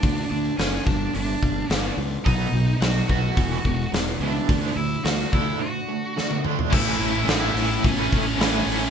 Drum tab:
CC |----------------|----------------|----------------|x---------------|
HH |o---o---o---o---|o---o---o---o---|o---o-----------|--o-o-o-o-o-o-o-|
SD |----o-------o---|----o-------o---|----o-------o---|----o-------o---|
T1 |----------------|----------------|-------------o--|----------------|
T2 |----------------|----------------|--------------o-|----------------|
FT |----------------|----------------|---------------o|----------------|
BD |o-----o---o-----|o-----o-o-o-----|o-----o---------|o-------o-o-----|